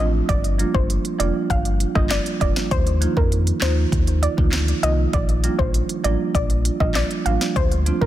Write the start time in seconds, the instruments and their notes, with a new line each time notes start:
Already playing: marimba F3
0.00 analog synth bass A1, marimba A3 C4 D4 F4
0.29 analog synth bass G1, synth pluck D5, kick, closed hi-hat
0.44 closed hi-hat
0.58 marimba F3 G3 A#3 D4 F4, closed hi-hat
0.74 analog synth bass G1, synth pluck C5, kick
0.90 closed hi-hat
1.05 closed hi-hat
1.19 analog synth bass F1, marimba F3 G3 A#3 D4 F4, synth pluck D5, closed hi-hat
1.50 analog synth bass G1, synth pluck F5, kick, closed hi-hat
1.65 closed hi-hat
1.79 marimba D4 F4, closed hi-hat
1.95 analog synth bass G1, marimba F3 G3 A#3 D4 F4, synth pluck D#5, kick, cross-stick
2.10 synth pluck D5, snare, clap, closed hi-hat
2.26 closed hi-hat
2.40 analog synth bass F1, marimba F3 G3 A#3 D4 F4, synth pluck D5, kick, closed hi-hat
2.56 snare
2.71 analog synth bass D#2, synth pluck C5, kick, closed hi-hat
2.87 closed hi-hat
3.01 marimba D#3 F3 A#3 D#4 F4, closed hi-hat
3.17 analog synth bass F2, synth pluck A#4, kick
3.32 closed hi-hat
3.47 closed hi-hat
3.61 analog synth bass D#2, marimba D#3 F3 A#3 D#4 F4, synth pluck C5, snare, clap, closed hi-hat
3.92 analog synth bass D#2, kick, closed hi-hat
4.07 closed hi-hat
4.22 marimba D#4 F4, synth pluck D5, closed hi-hat
4.37 analog synth bass D2, marimba D#3 F3 A#3 D#4 F4, kick
4.52 snare, clap, closed hi-hat
4.68 closed hi-hat
4.83 analog synth bass C2, marimba D#3 F3 A#3 D#4 F4, synth pluck D#5, closed hi-hat
5.13 analog synth bass A#1, synth pluck D5, kick, closed hi-hat
5.29 closed hi-hat
5.43 marimba F3 G3 A#3 D4 F4, closed hi-hat
5.59 analog synth bass A#1, synth pluck C5, kick
5.74 closed hi-hat
5.89 closed hi-hat
6.04 analog synth bass A1, marimba F3 G3 A#3 D4 F4, synth pluck D5, closed hi-hat
6.35 analog synth bass A#1, synth pluck D5, kick, closed hi-hat
6.50 closed hi-hat
6.65 marimba D4 F4, closed hi-hat
6.80 analog synth bass A#1, marimba F3 G3 A#3 D4 F4, synth pluck D#5, kick
6.95 synth pluck D5, snare, clap, closed hi-hat
7.11 closed hi-hat
7.25 analog synth bass A1, marimba F3 G3 A#3 D4 F4, synth pluck F5, closed hi-hat
7.41 snare
7.56 analog synth bass D2, synth pluck C5, kick, closed hi-hat
7.72 closed hi-hat
7.86 marimba F3 A3 C4 D4 F4, closed hi-hat
8.01 analog synth bass D#2, synth pluck A#4, kick